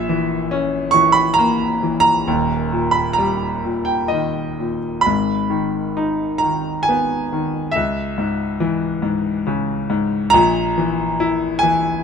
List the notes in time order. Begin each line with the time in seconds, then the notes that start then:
Already playing: A#1 A#2 E5
0.09 E3
0.51 C#4
0.91 E3 C#6
1.12 B5
1.34 A#5
1.39 A#3
1.83 E3
2.00 A#5
2.27 D#1 D#2
2.72 A#2
2.91 B5
3.13 A#5
3.18 G3
3.64 A#2
3.85 G5
4.08 D#3 D#5
4.59 A#2
5.01 B5
5.06 G#1 G#2
5.50 D#3
5.97 D#4
6.38 A#5
6.43 D#3
6.83 G#5
6.89 B3
7.32 D#3
7.71 E5
7.76 C#2
8.18 G#2
8.60 E3
9.02 G#2
9.47 C#3
9.90 G#2
10.30 A#1 A#2 A#5
10.78 E3
11.20 E4
11.59 G#5
11.63 E3